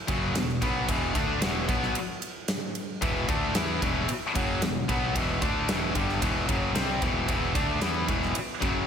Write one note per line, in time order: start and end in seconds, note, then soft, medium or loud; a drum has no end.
0.08 0.34 F#1 loud
0.08 0.34 F#2 medium
0.08 0.35 C#3 loud
0.08 0.35 F#3 loud
0.08 kick loud
0.08 ride medium
0.35 0.60 E1 medium
0.35 0.57 E2 medium
0.35 0.57 B2 medium
0.35 snare loud
0.35 ride loud
0.49 snare soft
0.61 0.87 B1 medium
0.61 0.87 B2 medium
0.61 0.88 F#3 medium
0.61 0.89 B3 medium
0.61 kick medium
0.61 ride medium
0.88 1.14 E1 medium
0.88 1.14 E2 medium
0.88 1.14 B2 medium
0.88 1.15 E3 medium
0.88 kick medium
0.88 ride medium
1.15 1.40 D2 medium
1.15 1.41 D3 medium
1.15 1.41 A3 medium
1.15 1.42 D4 loud
1.15 kick loud
1.15 ride medium
1.41 1.67 E1 medium
1.41 1.68 E2 medium
1.41 1.66 B2 medium
1.41 1.68 E3 loud
1.41 snare loud
1.41 ride medium
1.68 1.94 B1 medium
1.68 1.94 B2 medium
1.68 1.95 F#3 medium
1.68 1.95 B3 loud
1.68 kick loud
1.68 ride medium
1.83 snare soft
1.95 ride medium
2.22 ride medium
2.48 snare loud
2.48 ride medium
2.75 ride medium
3.01 3.27 E1 medium
3.01 3.28 E2 medium
3.01 3.28 B2 medium
3.01 3.28 E3 medium
3.01 kick loud
3.01 ride medium
3.28 3.54 D2 medium
3.28 3.54 D3 medium
3.28 3.55 A3 medium
3.28 3.55 D4 medium
3.28 kick loud
3.28 ride medium
3.55 3.81 E2 medium
3.55 3.81 E3 medium
3.55 3.81 B3 medium
3.55 3.82 E4 loud
3.55 snare loud
3.55 ride medium
3.81 4.07 E1 medium
3.81 4.07 E2 medium
3.81 4.08 B2 medium
3.81 4.08 E3 loud
3.81 kick medium
3.81 ride medium
4.08 muted distorted electric guitar stroke soft
4.08 muted picked electric bass stroke soft
4.08 ride medium
4.34 4.60 F#1 medium
4.34 4.61 F#2 medium
4.34 4.61 C#3 medium
4.34 4.61 F#3 loud
4.34 kick loud
4.34 ride medium
4.62 4.87 E1 medium
4.62 4.83 E2 medium
4.62 4.84 B2 medium
4.62 snare loud
4.62 ride loud
4.88 5.14 B1 medium
4.88 5.14 B2 medium
4.88 5.15 F#3 medium
4.88 5.15 B3 loud
4.88 kick medium
4.88 ride medium
5.14 5.41 E1 medium
5.14 5.41 E2 medium
5.14 5.41 B2 medium
5.14 5.42 E3 medium
5.14 kick loud
5.14 ride medium
5.42 5.67 D2 medium
5.42 5.68 D3 medium
5.42 5.68 A3 medium
5.42 5.68 D4 loud
5.42 kick loud
5.42 ride medium
5.68 5.94 E1 medium
5.68 5.94 E2 medium
5.68 5.94 B2 loud
5.68 5.95 E3 loud
5.68 snare loud
5.68 ride medium
5.94 6.20 G1 medium
5.94 6.21 G2 medium
5.94 6.21 D3 loud
5.94 6.21 G3 medium
5.94 kick medium
5.94 ride medium
6.09 snare soft
6.21 6.47 E1 loud
6.21 6.47 E2 medium
6.21 6.47 B2 medium
6.21 6.48 E3 loud
6.21 kick loud
6.21 ride medium
6.47 6.74 F#1 loud
6.47 6.74 F#2 medium
6.47 6.73 C#3 loud
6.47 6.74 F#3 loud
6.47 kick loud
6.47 ride medium
6.74 7.00 C2 medium
6.74 7.00 C3 medium
6.74 7.01 G3 medium
6.74 7.01 C4 loud
6.74 snare loud
6.74 ride medium
6.89 snare soft
7.01 7.27 E1 medium
7.01 7.27 E2 medium
7.01 7.28 B2 medium
7.01 7.28 E3 medium
7.01 kick medium
7.01 ride medium
7.28 7.53 E1 medium
7.28 7.54 E2 medium
7.28 7.54 B2 medium
7.28 7.54 E3 loud
7.28 kick medium
7.28 ride medium
7.54 7.80 D2 medium
7.54 7.80 D3 medium
7.54 7.81 A3 medium
7.54 7.81 D4 loud
7.54 kick loud
7.54 ride medium
7.81 8.06 E2 medium
7.81 8.07 E3 medium
7.81 8.08 B3 loud
7.81 8.08 E4 loud
7.81 snare loud
7.81 ride medium
8.07 8.33 E1 medium
8.07 8.33 E2 medium
8.07 8.34 B2 loud
8.07 8.34 E3 loud
8.07 kick loud
8.07 ride medium
8.23 snare soft
8.35 muted distorted electric guitar stroke medium
8.35 muted picked electric bass stroke soft
8.35 ride medium
8.61 8.87 F#1 medium
8.61 8.87 F#2 medium
8.61 8.87 C#3 loud
8.61 8.87 F#3 loud
8.61 kick medium
8.61 ride medium